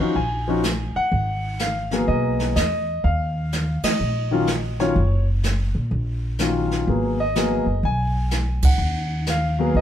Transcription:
Already playing: F5
0.00 E2 F3 C#4 D#4 F#4
0.15 A#1 G#5, brush sweep, kick
0.48 F3 C#4 D#4 F#4
0.63 snare, hi-hat pedal
0.96 F#5, muted upright bass stroke
1.12 G#1, brush sweep, kick
1.59 F5, snare, hi-hat pedal
1.91 F#3 A#3 B3 G#4, snare
2.08 B1 D#5, brush sweep, kick
2.40 snare
2.56 E2 D#5, snare, hi-hat pedal
3.04 D#2 F5, brush sweep, kick
3.52 snare, hi-hat pedal
3.83 D#5, muted upright bass stroke, snare, ride
4.00 A#1, brush sweep
4.31 D#3 F#3 C#4 F4
4.47 snare, hi-hat pedal
4.79 D#3 F#3 C#4 F4 C#5, snare
4.96 F#1, brush sweep, kick
5.43 snare, hi-hat pedal
5.75 A#2
5.91 A#1, brush sweep, kick
6.39 D#3 F#3 C#4 F4, snare, hi-hat pedal
6.71 snare
6.87 G#1 F#3 A#3 B3 G#4, brush sweep, kick
7.20 D#5
7.35 F#3 A#3 B3 G#4, snare, hi-hat pedal
7.66 F#1
7.83 B1 G#5, brush sweep, kick
8.31 snare, hi-hat pedal
8.62 F#5, kick, ride
8.78 D#2, brush sweep
9.27 F5, snare, hi-hat pedal
9.59 F#3 A#3 B3 G#4
9.74 B1 D#5, brush sweep, kick

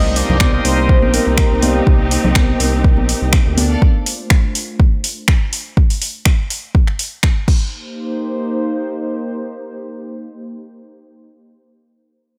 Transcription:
Already playing: C2 G3 A#3 C4 D#4 G4 A4 C5 D#5 F5
0.11 D#4
0.16 D5, open hi-hat
0.29 C2, low conga
0.39 G3 A#3 C4 D#4 G4, finger snap, kick, high conga
0.54 G3 A#3 C4 D#4
0.65 C2 C5, open hi-hat
0.89 C5, kick
1.02 A#1 G3 A#3 C4 D#4, high conga
1.14 A#4, open hi-hat
1.27 C2
1.38 A#4, finger snap, kick
1.51 C2
1.62 G3 A#3 C4 D#4 G4, open hi-hat, high conga
1.87 C2 A#4, kick
2.11 open hi-hat
2.25 C2, low conga
2.35 finger snap, kick, high conga
2.60 C2, open hi-hat
2.84 kick
2.97 A#1, high conga
3.09 open hi-hat
3.22 C2
3.33 finger snap, kick
3.46 D2
3.57 A3 D4 F4 C5, open hi-hat, high conga
3.69 A4 D5 F5
3.82 kick
4.06 open hi-hat
4.30 finger snap, kick
4.55 open hi-hat
4.80 kick
5.04 open hi-hat
5.28 finger snap, kick
5.53 open hi-hat
5.77 kick
5.90 open hi-hat
6.02 open hi-hat
6.25 finger snap, kick
6.50 open hi-hat
6.75 kick
6.87 finger snap
6.99 open hi-hat
7.23 finger snap, kick
7.48 A#3 D#4 G4 C5, kick, crash

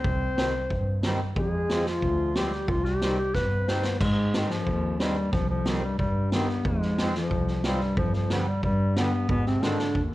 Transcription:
Already playing: C4 C5
0.04 C2, kick
0.36 D#3 G3 C4, snare
0.70 G2, kick
1.03 D#3 G3 C4, snare
1.36 F2 G#3 G#4, kick
1.43 G3
1.51 G#3
1.69 F3 G#3 C4, snare
1.85 F3 F4, snare
2.02 D2, kick
2.35 F3 G3 G#3 C4 G4, snare
2.52 snare
2.68 C2 F3 F4, kick
2.74 D#3
2.78 F3
2.85 G3 G4, snare
3.01 D#3 G3 C4, snare
3.19 G4
3.34 G2 B3 B4, kick, snare
3.42 C4
3.50 B3
3.59 C4
3.67 D#3 G3 B3 C4 C5, snare
3.74 C4
3.82 B3, snare
4.00 G#2 G#3, kick, snare, crash
4.34 D#3 G#3 C4, snare
4.50 F2 F3, snare
4.67 D#2, kick
4.99 G2 D#3 G3 G#3 C4, snare
5.32 C2 F2 F3, kick, snare
5.40 G2
5.48 F2 F3
5.66 D#3 G3 C4, snare
5.83 G2 G3
5.98 G2 G3, kick
6.31 D#3 G3 B3 C4, snare
6.49 snare
6.64 F2 G#2 G#3, kick
6.82 snare
6.98 F3 G#3 C4, snare
7.14 F2 F3, snare
7.31 C2, kick
7.48 snare
7.64 G2 F3 G3 G#3 C4, snare
7.72 G#2
7.78 G2, snare
7.96 F2 G2 F3, kick
8.13 F3, snare
8.30 D3 G3 B3, snare
8.48 G3
8.63 G2 G3, kick
8.96 D3 G3 B3, snare
9.29 G#2 B2 B3, kick
9.45 C3 C4, snare
9.61 D3 D#3 G#3 C4 D4, snare
9.79 snare
9.95 D#2, kick

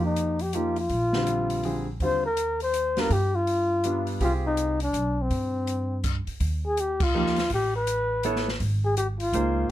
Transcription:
Already playing: F2 F3 A#3 D#4 G4
0.05 D#4
0.16 closed hi-hat
0.39 G4, open hi-hat
0.53 F3 A#3 D#4 F4 G4, closed hi-hat
0.76 F4, open hi-hat
0.89 A#1, kick, open hi-hat
1.13 D3 G3 C4 F4, snare
1.27 closed hi-hat
1.50 open hi-hat
1.63 D3 G3 C4 G#4, open hi-hat
2.00 D#2 D3 G3 C4 F4 C5, kick, open hi-hat
2.26 A#4
2.37 closed hi-hat
2.60 C5, open hi-hat
2.74 closed hi-hat
2.97 G3 B3 D4 F4 A#4, snare, open hi-hat
3.10 G2 G4, kick, open hi-hat
3.35 F4
3.47 open hi-hat
3.84 G3 B3 D4 F4, closed hi-hat
4.07 open hi-hat
4.20 C2 C4 F4 G4 G#4, kick, open hi-hat
4.46 D#4
4.57 closed hi-hat
4.80 D4, open hi-hat
4.93 B1, closed hi-hat
5.22 C4
5.31 G2, kick, open hi-hat
5.67 closed hi-hat
6.04 kick, closed hi-hat, crash
6.27 muted upright bass stroke, open hi-hat
6.40 D#2, kick, open hi-hat
6.66 G#4
6.77 G4, closed hi-hat
7.00 F4, kick, crash
7.15 F3 A#3 D#4 G4
7.26 snare
7.36 snare, open hi-hat
7.50 A1 G4, kick, open hi-hat
7.76 B4
7.87 closed hi-hat
8.23 B3 E4 A4 C#5, closed hi-hat
8.36 snare
8.48 snare
8.60 G#1, kick, open hi-hat
8.85 G#4
8.97 G4, closed hi-hat
9.20 F4, open hi-hat
9.33 C#2 A#3 D#4 G#4 C5, closed hi-hat

